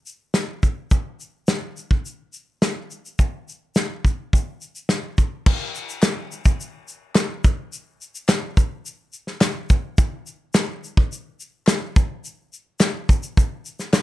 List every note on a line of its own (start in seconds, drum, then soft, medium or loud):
0.06 shaker soft
0.34 snare medium
0.34 shaker medium
0.63 kick medium
0.63 shaker soft
0.91 kick medium
0.91 shaker medium
1.20 shaker soft
1.48 snare loud
1.48 shaker medium
1.77 shaker soft
1.91 kick medium
2.06 shaker medium
2.33 shaker soft
2.62 snare medium
2.62 shaker medium
2.91 shaker soft
3.06 shaker soft
3.19 kick medium
3.19 shaker medium
3.49 shaker soft
3.75 snare medium
3.75 shaker medium
4.05 kick medium
4.05 shaker soft
4.33 kick medium
4.33 shaker medium
4.61 shaker soft
4.76 shaker soft
4.89 snare medium
4.89 shaker medium
5.18 kick medium
5.18 shaker soft
5.46 kick loud
5.46 crash medium
5.75 shaker medium
5.89 shaker medium
6.02 snare loud
6.02 clap medium
6.02 shaker medium
6.32 shaker soft
6.45 kick medium
6.45 shaker medium
6.61 shaker medium
6.88 shaker medium
7.15 snare loud
7.15 clap medium
7.15 shaker medium
7.44 kick medium
7.44 shaker medium
7.73 shaker medium
8.01 shaker soft
8.15 shaker medium
8.28 snare loud
8.28 clap loud
8.28 shaker medium
8.57 kick medium
8.57 shaker medium
8.86 shaker medium
9.13 shaker medium
9.27 snare soft
9.41 snare loud
9.41 clap medium
9.41 shaker medium
9.70 kick medium
9.70 shaker soft
9.98 kick loud
9.98 shaker medium
10.27 shaker medium
10.54 snare loud
10.54 clap medium
10.54 shaker medium
10.84 shaker soft
10.97 kick medium
11.12 shaker medium
11.40 shaker soft
11.67 snare loud
11.67 clap medium
11.67 shaker medium
11.96 kick loud
11.96 shaker soft
12.25 shaker medium
12.53 shaker soft
12.80 snare loud
12.80 clap medium
12.80 shaker medium
13.09 kick medium
13.09 shaker soft
13.23 shaker medium
13.37 kick medium
13.37 shaker medium
13.66 shaker medium
13.79 snare soft
13.79 shaker medium
13.93 snare loud
13.93 clap medium
13.93 shaker medium